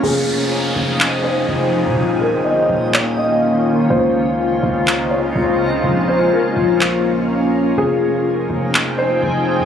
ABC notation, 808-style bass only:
X:1
M:4/4
L:1/16
Q:1/4=124
K:Fm
V:1 name="808-style bass" clef=bass
F,,,6 F,,,6 F,,,3 C, | E,,,3 G,,,3 E,,,8- E,,,2 | D,,6 D,,6 D,,4 | B,,,4 z2 B,,,8- B,,,2 |
F,,,6 F,,,6 F,,,3 C, |]